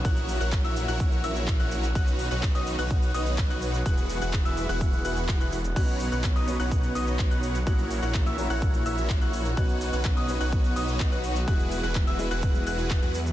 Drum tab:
CC |----------------|----------------|----------------|x---------------|
HH |xxoxxxoxxxoxxxox|xxoxxxoxxxoxxxox|xxoxxxoxxxoxxxox|xxoxxxoxxxoxxxox|
SH |xxxxxxxxxxxxxxxx|xxxxxxxxxxxxxxxx|xxxxxxxxxxxxxxxx|xxxxxxxxxxxxxxxx|
CP |----x-------x---|----x-------x---|----x-------x---|----x-------x---|
BD |o---o---o---o---|o---o---o---o---|o---o---o---o---|o---o---o---o---|

CC |----------------|----------------|----------------|
HH |xxoxxxoxxxoxxxox|xxoxxxoxxxoxxxox|xxoxxxoxxxoxxxox|
SH |xxxxxxxxxxxxxxxx|xxxxxxxxxxxxxxxx|xxxxxxxxxxxxxxxx|
CP |----x-------x---|----x-------x---|----x-------x---|
BD |o---o---o---o---|o---o---o---o---|o---o---o---o---|